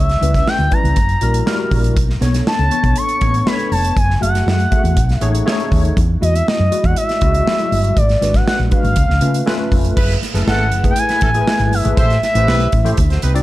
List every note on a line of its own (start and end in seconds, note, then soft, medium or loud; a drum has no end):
0.00 0.16 C#2 loud
0.00 0.35 E5 loud
0.09 snare soft
0.09 closed hi-hat soft
0.21 0.41 C#2 loud
0.21 0.58 G3 medium
0.21 0.58 C#4 medium
0.21 0.58 E4 medium
0.21 0.58 B4 medium
0.21 closed hi-hat medium
0.21 high conga medium
0.34 0.50 E5 loud
0.34 kick medium
0.34 snare soft
0.34 closed hi-hat medium
0.47 0.74 G5 loud
0.47 snare loud
0.47 muted conga soft
0.47 high conga medium
0.59 0.68 D2 medium
0.59 closed hi-hat soft
0.59 muted conga soft
0.71 0.96 G3 medium
0.71 0.96 C#4 medium
0.71 0.97 E4 medium
0.71 0.97 B4 medium
0.71 1.72 A#5 loud
0.71 kick medium
0.71 closed hi-hat medium
0.71 low conga medium
0.83 0.93 C#2 medium
0.83 closed hi-hat soft
0.83 high conga medium
0.83 low conga medium
0.96 1.16 F#1 loud
0.96 kick medium
0.96 closed hi-hat medium
1.08 closed hi-hat soft
1.08 muted conga soft
1.21 1.41 A#1 medium
1.21 1.40 G3 medium
1.21 1.40 E4 medium
1.21 1.40 F#4 medium
1.21 1.40 A#4 medium
1.21 closed hi-hat medium
1.21 high conga medium
1.34 closed hi-hat medium
1.46 1.96 G3 medium
1.46 1.96 E4 medium
1.46 1.97 F#4 medium
1.46 1.97 A#4 loud
1.46 snare loud
1.46 muted conga soft
1.71 1.97 A#1 medium
1.71 kick medium
1.71 open hi-hat medium
1.71 high conga medium
1.71 low conga medium
1.84 closed hi-hat medium
1.97 2.16 B1 loud
1.97 kick loud
1.97 closed hi-hat medium
2.08 snare soft
2.08 muted conga soft
2.20 2.40 B1 medium
2.20 2.57 B3 medium
2.20 2.58 D4 medium
2.20 2.58 A4 medium
2.20 2.58 C#5 medium
2.20 snare soft
2.20 closed hi-hat medium
2.20 high conga medium
2.34 snare soft
2.34 closed hi-hat medium
2.47 2.99 A5 loud
2.47 snare loud
2.47 muted conga soft
2.47 high conga medium
2.59 2.68 C#2 medium
2.59 closed hi-hat soft
2.59 muted conga soft
2.71 3.07 B3 medium
2.71 3.08 D4 medium
2.71 3.08 A4 medium
2.71 3.08 C#5 medium
2.71 closed hi-hat medium
2.71 low conga medium
2.83 2.93 B1 medium
2.83 kick medium
2.83 closed hi-hat medium
2.83 high conga medium
2.83 low conga medium
2.96 3.48 C#6 loud
2.96 closed hi-hat loud
3.09 closed hi-hat soft
3.21 3.41 A1 medium
3.21 3.39 B3 medium
3.21 3.40 D4 medium
3.21 3.40 A4 medium
3.21 3.40 C#5 medium
3.21 kick medium
3.21 closed hi-hat medium
3.21 high conga medium
3.34 closed hi-hat medium
3.46 3.96 B3 medium
3.46 3.96 D4 medium
3.46 3.96 A4 medium
3.46 3.53 B4 medium
3.46 3.71 B5 loud
3.46 snare loud
3.53 4.00 C#5 medium
3.59 closed hi-hat soft
3.59 muted conga soft
3.71 3.90 F1 medium
3.71 3.98 A5 medium
3.71 open hi-hat medium
3.71 high conga medium
3.85 closed hi-hat medium
3.96 4.15 F#1 loud
3.96 4.21 G#5 loud
3.96 kick loud
3.96 closed hi-hat medium
4.08 snare soft
4.08 muted conga soft
4.20 4.41 F#1 medium
4.20 4.57 A3 medium
4.20 4.58 F#4 medium
4.20 4.58 G#4 medium
4.20 4.58 E5 medium
4.20 5.20 F#5 loud
4.20 closed hi-hat medium
4.20 high conga medium
4.35 snare soft
4.35 closed hi-hat medium
4.47 4.66 F#2 medium
4.47 snare medium
4.47 muted conga soft
4.47 high conga medium
4.60 closed hi-hat soft
4.71 4.96 A3 medium
4.71 4.96 F#4 medium
4.71 4.97 G#4 medium
4.71 4.97 E5 medium
4.71 kick loud
4.71 closed hi-hat medium
4.71 low conga medium
4.84 4.98 E2 medium
4.84 closed hi-hat medium
4.84 high conga medium
4.84 low conga medium
4.97 5.16 B1 loud
4.97 kick medium
4.97 closed hi-hat loud
4.97 muted conga soft
5.09 snare soft
5.09 closed hi-hat soft
5.09 muted conga soft
5.20 5.41 A1 medium
5.20 5.39 A3 loud
5.20 5.40 D#4 medium
5.20 5.40 G#4 medium
5.20 5.40 C#5 loud
5.20 5.68 E5 loud
5.20 closed hi-hat medium
5.20 high conga medium
5.35 closed hi-hat medium
5.45 5.96 A3 medium
5.45 5.52 C#4 medium
5.45 5.97 G#4 medium
5.45 5.97 C#5 loud
5.45 snare loud
5.45 muted conga soft
5.52 5.99 D#4 medium
5.60 closed hi-hat soft
5.60 muted conga soft
5.71 5.91 D#2 medium
5.71 kick medium
5.71 open hi-hat medium
5.71 high conga medium
5.85 closed hi-hat medium
5.97 6.16 E2 loud
5.97 kick loud
5.97 closed hi-hat medium
6.21 6.41 E2 loud
6.21 6.58 G#3 medium
6.21 6.58 E4 medium
6.21 6.58 F#4 medium
6.21 6.36 D#5 medium
6.21 6.58 D#5 medium
6.21 closed hi-hat medium
6.21 high conga medium
6.34 6.49 E5 loud
6.34 closed hi-hat medium
6.47 6.86 D#5 loud
6.47 snare medium
6.47 high conga medium
6.59 6.69 F#2 medium
6.59 muted conga soft
6.71 7.08 G#3 medium
6.71 7.08 E4 medium
6.71 7.08 F#4 medium
6.71 6.78 D5 medium
6.71 closed hi-hat medium
6.71 low conga medium
6.78 7.11 D#5 medium
6.83 6.94 E2 medium
6.83 6.97 F#5 loud
6.83 kick medium
6.83 closed hi-hat medium
6.83 high conga medium
6.83 low conga medium
6.96 7.99 E5 loud
6.96 closed hi-hat loud
7.08 snare soft
7.08 closed hi-hat soft
7.08 muted conga soft
7.21 7.41 C#2 medium
7.21 7.39 G#3 medium
7.21 7.40 E4 medium
7.21 7.40 F#4 medium
7.21 7.40 D#5 medium
7.21 kick loud
7.21 closed hi-hat medium
7.21 high conga medium
7.34 closed hi-hat medium
7.46 7.52 F#3 medium
7.46 7.96 E4 medium
7.46 7.97 F#4 medium
7.46 7.97 E5 medium
7.46 snare loud
7.46 muted conga soft
7.52 7.99 G#3 medium
7.59 closed hi-hat soft
7.71 7.91 G1 medium
7.71 open hi-hat medium
7.71 high conga medium
7.84 closed hi-hat medium
7.97 8.16 G#1 loud
7.97 8.37 D5 loud
7.97 kick loud
7.97 closed hi-hat medium
8.08 snare soft
8.08 closed hi-hat soft
8.08 muted conga soft
8.21 8.41 G#1 medium
8.21 8.58 G#3 medium
8.21 8.58 D4 medium
8.21 8.58 F#4 medium
8.21 8.59 B4 medium
8.21 snare soft
8.21 closed hi-hat medium
8.21 high conga medium
8.34 8.47 F#5 medium
8.34 kick medium
8.34 snare soft
8.34 closed hi-hat medium
8.46 8.59 F#5 loud
8.46 snare loud
8.46 muted conga soft
8.46 high conga medium
8.59 8.69 A#1 medium
8.70 8.96 G#3 medium
8.70 8.97 D4 medium
8.70 8.97 F#4 medium
8.70 8.97 B4 medium
8.70 9.69 F5 loud
8.70 kick medium
8.70 closed hi-hat medium
8.70 low conga medium
8.83 8.94 G#1 medium
8.83 closed hi-hat medium
8.83 high conga medium
8.83 low conga medium
8.96 9.06 C#2 loud
8.96 kick medium
8.96 closed hi-hat loud
9.08 9.19 C#2 medium
9.08 snare soft
9.08 muted conga soft
9.21 9.41 C#3 loud
9.21 9.40 A3 medium
9.21 9.40 C#4 medium
9.21 9.40 F4 medium
9.21 9.40 B4 medium
9.21 closed hi-hat medium
9.21 high conga medium
9.34 closed hi-hat medium
9.46 9.96 A3 medium
9.46 9.97 C#4 medium
9.46 9.97 F4 loud
9.46 9.97 B4 loud
9.46 snare loud
9.46 muted conga soft
9.60 muted conga soft
9.72 9.91 F1 loud
9.72 kick medium
9.72 open hi-hat medium
9.72 high conga medium
9.85 closed hi-hat medium
9.97 10.16 F#1 loud
9.97 10.17 E4 loud
9.97 10.17 G#4 loud
9.97 10.17 B4 loud
9.97 kick loud
9.97 crash loud
10.09 snare soft
10.09 closed hi-hat soft
10.09 muted conga soft
10.23 snare soft
10.23 closed hi-hat medium
10.23 high conga medium
10.34 10.44 F#1 medium
10.34 10.71 A3 medium
10.34 10.44 C#4 medium
10.34 10.44 E4 medium
10.34 10.71 E4 medium
10.34 10.71 G#4 medium
10.34 10.44 A4 medium
10.34 10.71 B4 medium
10.34 snare soft
10.34 closed hi-hat medium
10.46 10.72 G#1 medium
10.46 10.67 C#4 loud
10.46 10.67 E4 loud
10.46 10.67 A4 loud
10.46 10.88 F#5 loud
10.46 snare loud
10.46 muted conga soft
10.46 high conga medium
10.60 muted conga soft
10.72 10.91 F#1 medium
10.72 closed hi-hat medium
10.72 low conga medium
10.83 11.21 A3 medium
10.83 11.21 E4 medium
10.83 11.21 G#4 medium
10.83 11.21 B4 medium
10.83 kick medium
10.83 closed hi-hat medium
10.83 high conga medium
10.83 low conga medium
10.91 11.00 G5 medium
10.96 11.76 G#5 loud
10.96 closed hi-hat loud
10.96 muted conga soft
11.09 11.20 E4 medium
11.09 11.20 G#4 medium
11.09 11.20 B4 medium
11.09 snare soft
11.09 closed hi-hat soft
11.09 muted conga soft
11.21 11.41 A1 medium
11.21 11.30 C#4 medium
11.21 11.29 E4 medium
11.21 11.30 A4 medium
11.21 kick loud
11.21 closed hi-hat medium
11.21 high conga medium
11.34 11.71 A3 medium
11.34 11.71 E4 medium
11.34 11.71 G#4 medium
11.34 11.41 A4 medium
11.34 closed hi-hat medium
11.41 11.74 B4 medium
11.46 snare loud
11.46 high conga soft
11.60 11.72 G#1 medium
11.60 closed hi-hat soft
11.60 muted conga soft
11.72 11.82 G1 medium
11.72 11.98 E5 medium
11.72 open hi-hat medium
11.72 high conga medium
11.72 low conga medium
11.84 11.95 G#1 medium
11.84 11.97 A3 medium
11.84 11.97 E4 medium
11.84 11.97 G#4 medium
11.84 11.98 B4 medium
11.84 closed hi-hat medium
11.97 12.16 A1 loud
11.97 12.17 G4 loud
11.97 12.17 A4 loud
11.97 12.17 C5 loud
11.97 12.22 E5 medium
11.97 kick loud
11.97 closed hi-hat medium
12.10 snare soft
12.10 closed hi-hat soft
12.23 12.95 E5 medium
12.23 snare soft
12.23 closed hi-hat medium
12.23 high conga medium
12.34 12.48 A1 loud
12.34 12.71 A3 medium
12.34 12.71 E4 medium
12.34 12.45 E4 medium
12.34 12.45 G4 medium
12.34 12.72 G4 medium
12.34 12.45 B4 medium
12.34 12.72 C5 medium
12.34 closed hi-hat medium
12.47 12.67 B1 medium
12.47 12.67 E4 loud
12.47 12.67 G4 loud
12.47 12.67 B4 loud
12.47 snare loud
12.47 muted conga soft
12.47 high conga medium
12.60 closed hi-hat soft
12.60 muted conga soft
12.72 12.92 A1 medium
12.72 kick medium
12.72 closed hi-hat medium
12.72 low conga medium
12.84 12.97 A3 loud
12.84 12.97 E4 medium
12.84 12.98 G4 medium
12.84 12.98 C5 loud
12.84 closed hi-hat medium
12.84 high conga medium
12.84 low conga medium
12.97 13.17 D2 loud
12.97 kick medium
12.97 closed hi-hat loud
13.10 13.20 F#4 medium
13.10 13.20 A4 medium
13.10 13.20 C5 medium
13.10 snare soft
13.10 closed hi-hat soft
13.22 13.42 C2 medium
13.22 13.33 D#4 medium
13.22 13.33 G4 medium
13.22 13.33 B4 medium
13.22 closed hi-hat medium
13.22 high conga medium
13.34 13.43 C4 loud
13.34 13.43 D#4 medium
13.34 13.43 F#4 medium
13.34 13.43 D5 loud
13.34 closed hi-hat medium